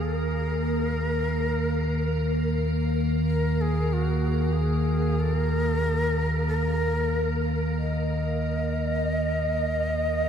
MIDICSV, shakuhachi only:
0, 0, Header, 1, 2, 480
1, 0, Start_track
1, 0, Tempo, 1284797
1, 18, Time_signature, 4, 2, 24, 8
1, 3844, End_track
2, 0, Start_track
2, 0, Title_t, "Shakuhachi"
2, 0, Program_c, 0, 77
2, 15, Note_on_c, 0, 69, 97
2, 56, Note_off_c, 0, 69, 0
2, 56, Note_on_c, 0, 70, 97
2, 983, Note_off_c, 0, 70, 0
2, 1223, Note_on_c, 0, 70, 85
2, 1349, Note_on_c, 0, 68, 80
2, 1355, Note_off_c, 0, 70, 0
2, 1468, Note_on_c, 0, 66, 77
2, 1474, Note_off_c, 0, 68, 0
2, 1692, Note_on_c, 0, 68, 84
2, 1698, Note_off_c, 0, 66, 0
2, 1943, Note_on_c, 0, 69, 107
2, 1949, Note_off_c, 0, 68, 0
2, 1996, Note_off_c, 0, 69, 0
2, 1996, Note_on_c, 0, 70, 107
2, 2418, Note_off_c, 0, 70, 0
2, 2421, Note_on_c, 0, 70, 100
2, 2786, Note_off_c, 0, 70, 0
2, 2906, Note_on_c, 0, 75, 102
2, 3844, Note_off_c, 0, 75, 0
2, 3844, End_track
0, 0, End_of_file